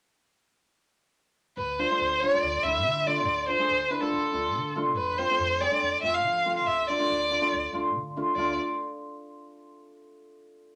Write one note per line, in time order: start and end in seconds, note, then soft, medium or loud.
1.57 1.82 D2 medium
1.57 1.81 B4 medium
1.79 1.84 D4 medium
1.79 1.84 F4 medium
1.79 2.22 C5 medium
1.91 2.00 A3 medium
1.91 2.01 D4 medium
1.91 2.01 F4 medium
1.99 2.25 D2 medium
2.20 2.27 D4 medium
2.20 2.27 F4 medium
2.20 2.65 D5 medium
2.33 2.43 A3 soft
2.33 2.43 D4 medium
2.33 2.43 F4 medium
2.42 2.55 D2 medium
2.63 2.84 D2 medium
2.63 2.75 A3 medium
2.63 2.75 D4 soft
2.63 2.75 E4 medium
2.63 3.08 E5 medium
2.85 3.27 D3 medium
3.06 3.16 A3 medium
3.06 3.17 D4 medium
3.06 3.17 F4 medium
3.06 3.48 D5 medium
3.27 3.52 D2 medium
3.48 3.53 D4 medium
3.48 3.53 F4 medium
3.48 3.92 C5 medium
3.58 3.69 A3 medium
3.58 3.69 D4 medium
3.58 3.69 G#4 medium
3.69 3.94 D2 medium
3.90 3.95 D4 medium
3.90 3.96 E4 medium
3.90 4.02 B4 medium
4.00 4.11 A3 medium
4.00 4.11 D4 medium
4.00 4.11 F4 medium
4.00 4.75 A4 medium
4.12 4.24 D2 medium
4.33 4.55 D2 medium
4.33 4.43 A3 medium
4.33 4.43 D4 medium
4.33 4.43 F4 medium
4.55 4.96 D3 medium
4.76 4.86 A3 medium
4.76 4.86 D4 medium
4.76 4.86 F4 medium
4.96 5.21 F2 medium
4.96 5.20 B4 medium
5.18 5.23 C4 medium
5.18 5.23 F4 medium
5.18 5.62 C5 medium
5.30 5.40 A3 medium
5.30 5.40 C4 medium
5.30 5.40 F4 medium
5.38 5.64 F2 medium
5.61 5.66 C4 medium
5.61 5.66 G#4 medium
5.61 6.02 D5 medium
5.70 5.81 A3 medium
5.70 5.81 C4 medium
5.70 5.81 D4 medium
5.82 5.94 F2 medium
6.02 6.25 F2 medium
6.02 6.14 A3 medium
6.02 6.13 C4 soft
6.02 6.14 F4 medium
6.02 6.15 E5 loud
6.14 6.55 F5 medium
6.25 6.67 F3 medium
6.45 6.56 A3 medium
6.45 6.56 C4 medium
6.45 6.56 F4 medium
6.56 6.68 F5 medium
6.66 6.92 D2 medium
6.66 6.87 E5 medium
6.87 6.94 D4 medium
6.87 6.94 F4 medium
6.87 7.69 D5 medium
6.99 7.09 A3 medium
6.99 7.09 D4 medium
6.99 7.09 F4 medium
7.10 7.35 D2 medium
7.30 7.36 D4 medium
7.30 7.36 F4 medium
7.41 7.52 A3 medium
7.41 7.52 D4 medium
7.41 7.52 F4 medium
7.52 7.65 D2 medium
7.73 7.94 D2 medium
7.73 7.84 A3 medium
7.73 7.84 D4 medium
7.73 7.84 F4 medium
7.94 8.20 D3 medium
8.17 8.27 A3 medium
8.17 8.27 D4 medium
8.17 8.27 F4 medium
8.35 8.56 D2 medium
8.35 8.57 A3 medium
8.35 8.58 D4 medium
8.35 8.57 F4 medium
8.35 8.56 D5 medium